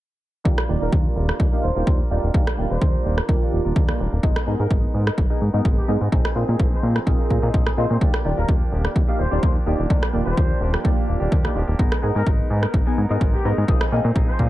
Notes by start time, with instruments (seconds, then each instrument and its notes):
0.45 analog synth bass D#2, clean electric guitar G3 D4 F4 A#4, analog polysynth A#3 D#4 F4 G4 D5, kick
0.58 cross-stick
0.68 analog synth bass D#1, analog polysynth D#3 A#3 F4 G4 D5
0.81 analog synth bass D#1, clean electric guitar D4 F4 A#4, horn section A#4
0.92 analog synth bass D#2, clean electric guitar G3 D4 A#4, kick
1.15 analog synth bass D#1, clean electric guitar G3 D4 F4 A#4
1.29 clean electric guitar D4 F4, cross-stick
1.40 analog synth bass D#2, kick
1.51 analog polysynth A#3 D#4 F4 G4 F5, clean electric guitar D4 F4 A#4
1.63 analog synth bass D#1, horn section C5
1.75 analog synth bass D#1, analog polysynth A#3 D#4 F4 G4 D5, clean electric guitar D4 F4 A#4
1.86 analog synth bass D#2, clean electric guitar G3 D4, kick
2.10 analog synth bass D#1, clean electric guitar G3 D4 F4 A#4, analog polysynth A#3 D#4 F4 G4 D5
2.22 analog synth bass D#1, clean electric guitar D4 F4 A#4
2.33 analog synth bass D#2, clean electric guitar G3 D4 A#4, analog polysynth A#3 D#4 F4 G4 D5, kick
2.47 cross-stick
2.57 analog synth bass D#1, analog polysynth D#3 A#3 F4 G4 D5
2.70 analog synth bass D#1, clean electric guitar D4 F4 A#4, horn section C5
2.81 analog synth bass D#2, clean electric guitar G3 D4 F4 A#4, kick
3.04 analog synth bass D#1, clean electric guitar G3 D4 F4 A#4
3.17 clean electric guitar D4 F4 A#4, cross-stick
3.28 analog synth bass D#2, analog polysynth D#3 A#3 F4 G4 D5, kick
3.41 clean electric guitar D4 F4 A#4
3.53 analog synth bass D#1
3.65 analog synth bass D#1, clean electric guitar D4 F4 A#4
3.76 analog synth bass D#2, clean electric guitar G3 D4 F4 A#4, kick
3.88 analog polysynth A#3 D#4 F4 G4 D5, cross-stick
3.99 analog synth bass D#1, clean electric guitar G3 D4 F4 A#4
4.12 analog synth bass D#1, clean electric guitar D4 F4 A#4
4.23 analog synth bass G#1, clean electric guitar G#3 B3 D#4 A#4, analog polysynth B3 D#4 G#4 A#4 D#5, kick
4.36 cross-stick
4.46 analog synth bass G#2, analog polysynth B3 D#4 G#4 A#4 D#5
4.59 analog synth bass G#2, clean electric guitar B3 D#4 A#4, horn section A#4
4.70 analog synth bass G#1, clean electric guitar G#3 B3 D#4 A#4, kick
4.93 analog synth bass G#2, clean electric guitar G#3 B3 D#4 A#4
5.06 clean electric guitar B3 D#4 A#4, cross-stick
5.18 analog synth bass G#1, kick
5.30 analog polysynth B3 D#4 G#4 A#4 G#5, clean electric guitar B3 D#4 A#4
5.41 analog synth bass G#2
5.53 analog synth bass G#2, analog polysynth B3 D#4 G#4 A#4 D#5, clean electric guitar B3 D#4 A#4
5.65 analog synth bass G#1, clean electric guitar G#3 B3 D#4, kick
5.78 horn section G4
5.88 analog synth bass G#2, clean electric guitar G#3 B3 D#4 A#4, analog polysynth B3 D#4 G#4 A#4 D#5
6.01 analog synth bass G#2, clean electric guitar B3 D#4 A#4
6.12 analog synth bass A#1, clean electric guitar F3 C4 D#4 G#4, analog polysynth C4 F4 G#4 A#4 D#5, kick
6.25 cross-stick
6.35 analog synth bass A#2, analog polysynth C4 F4 G#4 A#4 D#5
6.48 analog synth bass A#2, clean electric guitar C4 D#4 G#4
6.59 analog synth bass A#1, clean electric guitar F3 C4 D#4 G#4, kick
6.73 horn section C5
6.82 analog synth bass A#2, clean electric guitar F3 C4 D#4 G#4
6.96 cross-stick
7.06 analog synth bass A#1, analog polysynth C4 F4 G#4 A#4 D#5, kick
7.18 clean electric guitar C4 D#4 G#4
7.30 analog synth bass A#2, kick
7.42 analog synth bass A#2, clean electric guitar C4 D#4 G#4
7.53 analog synth bass A#1, clean electric guitar F3 C4 D#4 G#4, kick
7.67 cross-stick
7.77 analog synth bass A#2, clean electric guitar F3 C4 D#4 G#4, analog polysynth C4 F4 G#4 A#4 D#5, horn section C5
7.90 analog synth bass A#2, clean electric guitar C4 D#4 G#4, horn section C5
8.01 analog synth bass D#2, clean electric guitar F3 A#3 D4 G4, analog polysynth A#3 D#4 F4 G4 D5, kick
8.14 cross-stick
8.24 analog synth bass D#1, analog polysynth D#3 A#3 F4 G4 D5
8.37 analog synth bass D#1, clean electric guitar A#3 D4 G4, horn section A#4
8.48 analog synth bass D#2, clean electric guitar F3 A#3 D4 G4, kick
8.71 analog synth bass D#1, clean electric guitar F3 A#3 D4 G4
8.84 clean electric guitar A#3 D4 G4, cross-stick
8.96 analog synth bass D#2, kick
9.07 analog polysynth A#3 D#4 F4 G4 F5, clean electric guitar A#3 D4 G4
9.19 analog synth bass D#1, horn section C5
9.31 analog synth bass D#1, analog polysynth A#3 D#4 F4 G4 D5, clean electric guitar A#3 D4 G4
9.43 analog synth bass D#2, clean electric guitar F3 A#3 D4 G4, kick
9.66 analog synth bass D#1, clean electric guitar F3 A#3 D4 G4, analog polysynth A#3 D#4 F4 G4 D5
9.78 analog synth bass D#1, clean electric guitar A#3 D4 G4
9.89 analog synth bass D#2, clean electric guitar F3 A#3 D4 G4, analog polysynth A#3 D#4 F4 G4 D5, kick
10.03 cross-stick
10.13 analog synth bass D#1, analog polysynth D#3 A#3 F4 G4 D5
10.25 analog synth bass D#1, clean electric guitar A#3 D4 G4, horn section C5
10.37 analog synth bass D#2, clean electric guitar F3 A#3 D4 G4, kick
10.60 analog synth bass D#1, clean electric guitar F3 A#3 D4 G4
10.74 cross-stick
10.84 analog synth bass D#2, analog polysynth D#3 A#3 F4 G4 D5, kick
10.96 clean electric guitar A#3 D4 G4
11.09 analog synth bass D#1
11.20 analog synth bass D#1, clean electric guitar A#3 D4 G4
11.32 analog synth bass D#2, clean electric guitar F3 A#3 D4 G4, kick
11.44 analog polysynth A#3 D#4 F4 G4 D5, cross-stick
11.55 analog synth bass D#1, clean electric guitar F3 A#3 D4 G4
11.67 analog synth bass D#1, clean electric guitar A#3 D4 G4
11.79 analog synth bass G#1, clean electric guitar G#3 B3 D#4 A#4, analog polysynth B3 D#4 G#4 A#4 D#5, kick
11.92 cross-stick
12.02 analog synth bass G#2, analog polysynth B3 D#4 G#4 A#4 D#5
12.15 analog synth bass G#2, clean electric guitar B3 D#4 A#4, horn section A#4
12.26 analog synth bass G#1, clean electric guitar G#3 B3 D#4 A#4, kick
12.50 analog synth bass G#2, clean electric guitar G#3 B3 D#4 A#4
12.62 clean electric guitar B3 D#4 A#4, cross-stick
12.74 analog synth bass G#1, kick
12.85 analog polysynth B3 D#4 G#4 A#4 G#5, clean electric guitar B3 D#4 A#4
12.98 analog synth bass G#2
13.09 analog synth bass G#2, analog polysynth B3 D#4 G#4 A#4 D#5, clean electric guitar B3 D#4 A#4
13.20 analog synth bass G#1, clean electric guitar G#3 B3 D#4 A#4, kick
13.33 horn section G4
13.43 analog synth bass G#2, clean electric guitar G#3 B3 D#4 A#4, analog polysynth B3 D#4 G#4 A#4 D#5
13.56 analog synth bass G#2, clean electric guitar B3 D#4 A#4
13.68 analog synth bass A#1, clean electric guitar F3 C4 D#4 G#4, analog polysynth C4 F4 G#4 A#4 D#5, kick
13.81 cross-stick
13.92 analog synth bass A#2, analog polysynth C4 F4 G#4 A#4 D#5
14.04 analog synth bass A#2, clean electric guitar C4 D#4 G#4
14.15 analog synth bass A#1, clean electric guitar F3 C4 D#4 G#4, kick
14.28 horn section C5
14.38 analog synth bass A#2, clean electric guitar F3 C4 D#4 G#4, kick